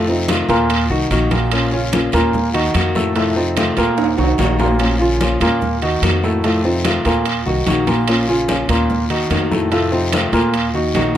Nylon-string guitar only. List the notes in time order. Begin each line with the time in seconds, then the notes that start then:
0.08 A3 C4 F4
0.29 C3 D#3 A3 C4 F4
0.50 A3 C4 F4
0.70 muted nylon-string guitar stroke
0.90 A#3 D#4 F#4
1.11 D#3 A#3 D#4 F#4
1.52 F3 A#3 C#4 F4
1.72 A#3 C#4 F4
1.93 F3 A#3 C#4 F4
2.13 A#3 C#4 F4
2.34 muted nylon-string guitar stroke
2.54 A#3 D#4 F#4
2.74 D#3 A#3 D#4 F#4
3.15 C3 D#3 A3 C4 F4
3.36 A3 C4 F4
3.56 C3 D#3 A3 C4 F4
3.76 A3 C4 F4
3.97 muted nylon-string guitar stroke
4.17 A#3 D#4 F#4
4.38 D#3 A#3 D#4 F#4
4.79 F3 A#3 C#4 F4
4.99 A#3 C#4 F4
5.20 F3 A#3 C#4 F4
5.40 A#3 C#4 F4
5.61 muted nylon-string guitar stroke
5.82 A#3 D#4 F#4
6.03 D#3 A#3 D#4 F#4
6.44 C3 D#3 A3 C4 F4
6.64 A3 C4 F4
6.84 C3 D#3 A3 C4 F4
7.06 A3 C4 F4
7.26 muted nylon-string guitar stroke
7.46 A#3 D#4 F#4
7.67 D#3 A#3 D#4 F#4
8.08 F3 A#3 C#4 F4
8.29 A#3 C#4 F4
8.49 F3 A#3 C#4 F4
8.69 A#3 C#4 F4
8.90 muted nylon-string guitar stroke
9.10 A#3 D#4 F#4
9.30 D#3 A#3 D#4 F#4
9.71 C3 D#3 A3 C4 F4
9.92 A3 C4 F4
10.13 C3 D#3 A3 C4 F4
10.34 A3 C4 F4
10.54 muted nylon-string guitar stroke
10.74 A#3 D#4 F#4
10.95 D#3 A#3 D#4 F#4